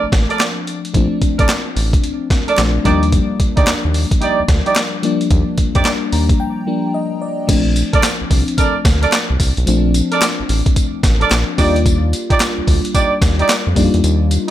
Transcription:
Already playing: fm electric piano F3 A3 C4 D4
0.03 analog synth bass A1
0.12 analog synth bass A1, kick, snare, closed hi-hat
0.30 horn section A4 A#4 D5, closed hi-hat
0.39 snare, clap, closed hi-hat
0.41 clap
0.67 closed hi-hat
0.85 closed hi-hat
0.94 analog synth bass A#1, fm electric piano F3 A3 C4 D4, kick, closed hi-hat
1.22 kick, closed hi-hat
1.38 analog synth bass A1, horn section A4 A#4 D5, kick, closed hi-hat
1.49 snare, clap, closed hi-hat
1.76 analog synth bass A1, open hi-hat
1.93 kick, closed hi-hat
2.04 closed hi-hat
2.30 kick, snare, closed hi-hat
2.48 horn section A4 A#4 D5, closed hi-hat
2.57 analog synth bass A#1, fm electric piano F3 A3 C4 D4, snare, clap, closed hi-hat
2.59 clap
2.84 analog synth bass D#2, fm electric piano F3 G3 A#3 D4, horn section D#4 G4 D5, kick, closed hi-hat
3.03 closed hi-hat
3.12 kick, closed hi-hat
3.40 kick, closed hi-hat
3.57 analog synth bass D2, horn section D#4 G4 D5, kick, closed hi-hat
3.67 analog synth bass D#2, snare, clap, closed hi-hat
3.85 analog synth bass D#2
3.94 open hi-hat
4.11 kick, closed hi-hat
4.21 horn section D#4 G4 D5, closed hi-hat
4.40 analog synth bass D2
4.48 analog synth bass D2, kick, snare, closed hi-hat
4.66 horn section D#4 G4 D5, closed hi-hat
4.76 snare, clap, closed hi-hat
4.77 clap
5.03 fm electric piano F3 G3 A#3 D4, closed hi-hat
5.21 closed hi-hat
5.31 analog synth bass D#2, kick, closed hi-hat
5.58 kick, closed hi-hat
5.75 analog synth bass F2, horn section D#4 G4 D5, kick, closed hi-hat
5.85 snare, clap, closed hi-hat
6.12 analog synth bass D#2, fm electric piano A#5, open hi-hat
6.29 kick, closed hi-hat
6.40 fm electric piano G5
6.67 fm electric piano F3 G3 A#3 D4
6.94 fm electric piano D#5
7.22 fm electric piano D5
7.47 analog synth bass A#1, fm electric piano F3 A3 C4 D4, kick, closed hi-hat, crash, tambourine
7.76 closed hi-hat, tambourine
7.93 horn section A4 A#4 D5, kick, closed hi-hat
8.03 snare, clap, closed hi-hat, tambourine
8.21 analog synth bass C2
8.31 analog synth bass C2, kick, open hi-hat
8.48 closed hi-hat
8.58 horn section A4 A#4 D5, kick, closed hi-hat, tambourine
8.85 analog synth bass D2, kick, snare, closed hi-hat, tambourine
9.02 horn section A4 A#4 D5, closed hi-hat
9.12 snare, clap, closed hi-hat, tambourine
9.30 analog synth bass C2
9.40 analog synth bass C2, kick, open hi-hat, tambourine
9.57 analog synth bass B1, closed hi-hat
9.66 analog synth bass A#1, fm electric piano F3 A3 C4 D4, closed hi-hat, tambourine
9.94 closed hi-hat, tambourine
10.12 horn section A4 A#4 D5, closed hi-hat
10.22 snare, clap, closed hi-hat, tambourine
10.40 analog synth bass A1
10.49 analog synth bass A1, open hi-hat
10.66 kick, closed hi-hat
10.76 kick, closed hi-hat, tambourine
11.03 analog synth bass A1, kick, snare, closed hi-hat, tambourine
11.21 horn section A4 A#4 D5, closed hi-hat
11.31 analog synth bass A#1, snare, clap, closed hi-hat, tambourine
11.32 clap
11.58 analog synth bass D#2, fm electric piano G3 A#3 D4 F4, horn section D#4 G4 D5, kick, open hi-hat, tambourine
11.76 closed hi-hat
11.86 kick, closed hi-hat, tambourine
12.13 closed hi-hat, tambourine
12.30 horn section D#4 G4 D5, kick, closed hi-hat
12.40 snare, clap, closed hi-hat, tambourine
12.58 analog synth bass D2
12.68 analog synth bass D2, kick, open hi-hat
12.85 closed hi-hat
12.95 horn section D#4 G4 D5, kick, closed hi-hat, tambourine
13.22 analog synth bass D#2, kick, snare, closed hi-hat, tambourine
13.39 horn section D#4 G4 D5, closed hi-hat
13.49 snare, clap, closed hi-hat, tambourine
13.50 clap
13.67 analog synth bass F2
13.75 analog synth bass F2, fm electric piano G3 A#3 D4 D#4, kick, open hi-hat, tambourine
13.84 fm electric piano F4
13.94 analog synth bass E2, closed hi-hat
14.04 analog synth bass D#2, closed hi-hat, tambourine
14.31 closed hi-hat, tambourine

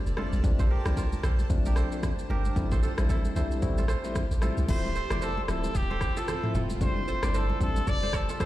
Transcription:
Already playing: kora F4 A4 C5, ambient pad G4 D5 A5
0.06 sub bass F1, shaker
0.17 tine electric piano G3 A3 C4 D4, kora F4 A4, cross-stick, high conga
0.33 sub bass A1, high conga, shaker
0.43 sub bass A#1, tine electric piano F3 A3 C4 D4, ambient pad D4 C5, kick, low conga, shaker
0.59 kora A4 C5, kick, high conga, shaker
0.71 kora G4 A#4
0.85 sub bass C2, tine electric piano F3 A3 C4 D4, cross-stick, high conga, shaker
0.97 kora F4 A#4, kick, shaker
1.12 high conga, shaker
1.23 sub bass A#1, kora A4 C5, cross-stick, low conga, shaker
1.39 high conga, shaker
1.50 sub bass A#1, tine electric piano F3 A3 C4 D4, kick, shaker
1.65 kora G4 A#4, high conga, shaker
1.76 kora A4 C5, cross-stick, shaker
1.92 tine electric piano F3 A3 C4 D4, shaker
2.03 kick, cross-stick, low conga, shaker
2.19 shaker
2.30 sub bass G1, kora G4 A#4, high conga
2.45 high conga, shaker
2.56 sub bass A1, tine electric piano G3 A3 C4 E4, ambient pad G4, kick, low conga, shaker
2.71 kora A4 C5, kick, high conga, shaker
2.83 kora F4 A4, shaker
2.98 sub bass A1, tine electric piano G3 A3 C4 E4, cross-stick, high conga, shaker
3.09 kora E4 A4, kick, shaker
3.25 high conga, shaker
3.36 sub bass C2, tine electric piano G3 A3 C4 E4, kora A4 C5, low conga, shaker
3.51 high conga, shaker
3.62 sub bass A1, tine electric piano G3 A3 C4 E4, kick, shaker
3.78 kora F4 A4, high conga, shaker
3.88 kora A4 C5, cross-stick, shaker
4.04 tine electric piano G3 A3 C4 E4, shaker
4.15 kick, cross-stick, low conga, shaker
4.31 sub bass A1, shaker
4.42 tine electric piano G3 A3 C4 E4, kora F4 A4, cross-stick, high conga, shaker
4.57 sub bass C2, high conga, shaker
4.68 sub bass D1, tine electric piano F3 A3 C4 E4, ambient pad C4 E4 F4, trumpet C5, kick, crash, low conga, shaker
4.85 high conga
4.95 kora A4 C5, shaker
5.10 sub bass F1, tine electric piano F3 A3 C4 E4, kora A#4 D5, cross-stick, high conga, shaker
5.22 kora A4 C5, trumpet A4, shaker
5.37 high conga
5.44 trumpet C5
5.48 sub bass D1, tine electric piano F3 A3 C4 E4, trumpet A4, cross-stick, shaker
5.64 high conga, shaker
5.75 sub bass D1, trumpet G4, kick, shaker
5.90 kora A4 C5, high conga
6.01 kick, cross-stick, shaker
6.17 kora F4 A4, trumpet A4, shaker
6.28 kora A4 C5, cross-stick, low conga, shaker
6.43 tine electric piano F3 A3 C4 E4, mid tom
6.54 sub bass E1, kora F4 A4, mid tom, high conga, shaker
6.70 high conga, shaker
6.80 sub bass F1, ambient pad D3 G3 G4, tine electric piano G3 A3 C4 D4, trumpet C5, kick, low conga, shaker
6.97 high conga
7.08 kora A4 C5, shaker
7.22 sub bass G1, tine electric piano G3 A3 C4 D4, kora A#4 D5, cross-stick, high conga, shaker
7.34 kora A4 C5, trumpet A4, shaker
7.50 high conga
7.60 sub bass A1, tine electric piano G3 A3 C4 D4, trumpet A4, kick, shaker
7.76 high conga, shaker
7.87 sub bass F1, trumpet D5, kick, shaker
8.03 kora A4 C5, high conga
8.13 trumpet A4, kick, cross-stick, shaker
8.29 kora F4 A4, shaker
8.40 kora A4 C5, kick, cross-stick, low conga, shaker

